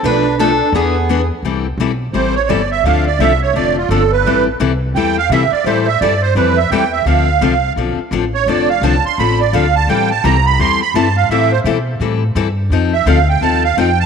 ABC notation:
X:1
M:4/4
L:1/16
Q:"Swing" 1/4=170
K:Am
V:1 name="Accordion"
D4 D4 B,6 z2 | z8 c2 ^c2 d2 e2 | f2 d2 e2 ^c2 d2 F2 A2 B2- | B2 z6 g2 f2 e2 d2 |
c2 e2 d2 c2 B2 e2 g2 e2 | f8 z6 ^c2 | d2 f2 a2 c'2 b2 d2 f2 a2 | g2 a2 _b2 =b2 c'2 b2 a2 f2 |
e2 c2 z12 | z2 e2 f2 g2 a2 f2 g2 a2 |]
V:2 name="Steel-string acoustic guitar"
B4 A4 ^G6 z2 | z16 | z16 | z16 |
z16 | z16 | z16 | z16 |
z16 | z16 |]
V:3 name="Steel-string acoustic guitar"
[B,,F,A,DA]2 z2 [B,,F,A,DA] z3 [E,B,D^G]2 z2 [E,B,DG] z3 | [E,G,CEA]2 z2 [E,G,CEA] z3 [E,G,CEA]2 z2 [E,G,CEA] z3 | [D,F,CDA]2 z2 [D,F,CDA] z3 [D,F,CDA]2 z2 [D,F,CDA] z3 | [E,G,CEA]2 z2 [E,G,CEA] z3 [E,G,CEA]2 z2 [E,G,CEA] z3 |
[E,G,CEA]2 z2 [E,G,CEA] z3 [E,G,CEA]2 z2 [E,G,CEA] z3 | [D,F,CDA]2 z2 [D,F,CDA] z3 [D,F,CDA]2 z2 [D,F,CDA] z3 | [D,F,CDA]2 z2 [D,F,CDA] z3 [D,F,CDA]2 z2 [D,F,CDA] z3 | [E,G,CEA]2 z2 [E,G,CEA] z3 [E,G,CEA]2 z2 [E,G,CEA] z3 |
[E,G,CEA]2 z2 [E,G,CEA] z3 [E,G,CEA]2 z2 [E,G,CEA] z3 | [F,C_EA]2 z2 [F,CEA] z3 [F,CEA]2 z2 [F,CEA] z3 |]
V:4 name="Upright bass" clef=bass
B,,,8 E,,8 | C,,4 B,,,4 A,,,4 G,,,4 | D,,4 C,,4 F,,,4 G,,,4 | A,,,4 C,,4 E,,4 C,2 z2 |
A,,4 G,,4 F,,4 E,,4 | D,,4 C,,4 B,,,2 z2 A,,,4 | F,,,4 C,,2 z2 A,,,4 D,,4 | A,,,4 C,,4 E,,4 G,,4 |
A,,4 B,,4 A,,4 G,,4 | F,,4 D,,4 _E,,4 F,,4 |]